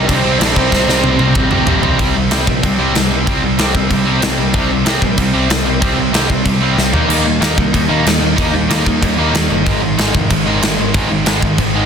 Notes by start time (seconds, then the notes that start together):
Already playing: C3 G3 C4
0.05 C2 C3 G3 C4 D4 D#4 D5, kick
0.09 crash
0.15 C4 C5
0.23 C2 C3 G3 C4 D#4
0.39 A#1 C3 G3 C4 D4 D#4 D5, snare, crash
0.55 C2 C3 G3 C4 D#4 C5, kick
0.71 C2 C3 G3 C4 D#4, kick, snare
0.87 C2 C3 G3 C4 D#4, snare
1.03 C2 C3 G3 C4 D#4, high tom
1.19 C2 C3 G3 C4 D#4, high tom
1.35 C2 C3 G3 C4 D#4, kick, mid tom
1.50 C2 C3 G3 C4 D#4, mid tom
1.66 A#1 C3 G3 C4 D#4, floor tom
1.83 C2 C3 G3 C4 D#4, floor tom
1.99 C2 C3 G3 C4, kick, crash
2.15 C3 G3
2.30 C2 C3 G3 C4, snare, crash
2.47 A#1 C3 G3 C4, kick
2.63 C2 C3 G3 C4, kick, crash
2.79 C2 C3 G3 C4
2.94 C2 C3 G3 C4, snare, crash
3.10 C3 G3 C4
3.26 C2 C3 G3 C4, kick, crash
3.42 C2 C3 G3
3.58 C2 C3 G3 C4, snare, crash
3.74 C3 G3 C4, kick
3.89 C2 C3 G3 C4, kick, crash
4.05 C3 G3 C4
4.21 C2 C3 G3 C4, snare, crash
4.38 C2 C3 G3 C4
4.53 C2 C3 G3 C4, kick, crash
4.69 C3 G3
4.85 C2 C3 G3 C4, snare, crash
5.01 A#1 C3 G3 C4, kick
5.17 C2 C3 G3 C4, kick, crash
5.33 C2 C3 G3 C4
5.50 C2 C3 G3 C4, snare, crash
5.65 C3 G3 C4
5.80 C2 C3 G3 C4, kick, crash
5.97 C2 C3 G3
6.13 C2 C3 G3 C4, snare, crash
6.28 C3 G3 C4, kick
6.45 C2 C3 G3 C4, kick, crash
6.61 C3 G3 C4
6.77 C2 C3 G3 C4, snare
6.93 D#2 D#3 G3 A#3 D#4, floor tom
7.09 D#2 D#3 G3 A#3 D#4, splash, crash
7.25 D#3 G3 A#3
7.41 D#2 D#3 G3 A#3 D#4, snare, crash
7.57 C2 D#3 G3 A#3 D#4, kick
7.73 D#2 D#3 G3 A#3 D#4, kick, crash
7.89 D#2 D#3 G3 A#3 D#4
8.05 D#2 D#3 G3 A#3 D#4, snare, crash
8.21 D#3 G3 A#3 D#4
8.36 D#2 D#3 G3 A#3 D#4, kick, crash
8.52 D#2 D#3 G3 A#3
8.68 D#2 D#3 G3 A#3 D#4, snare, crash
8.86 D#3 G3 A#3 D#4, kick
9.02 D#2 D#3 G3 A#3 D#4, kick, crash
9.18 D#3 G3 A#3 D#4
9.33 D#2 D#3 G3 A#3 D#4, snare, crash
9.50 G1 D#3 G3 A#3 D#4
9.66 G#2 D#3 G#3, kick, crash
9.82 G#2 D#3
9.97 G#1 G#2 D#3 G#3, snare, crash
10.14 F1 G#2 D#3 G#3, kick
10.30 G#1 G#2 D#3 G#3, kick, crash
10.46 G#1 G#2 D#3 G#3
10.62 G#1 G#2 D#3 G#3, snare, crash
10.78 G#2 D#3 G#3
10.93 G#1 G#2 D#3 G#3, kick, crash
11.09 G#1 G#2 D#3
11.25 G#1 G#2 D#3 G#3, snare, crash
11.41 G#2 D#3 G#3, kick
11.58 G#1 G#2 D#3 G#3, kick, crash
11.74 G#2 D#3 G#3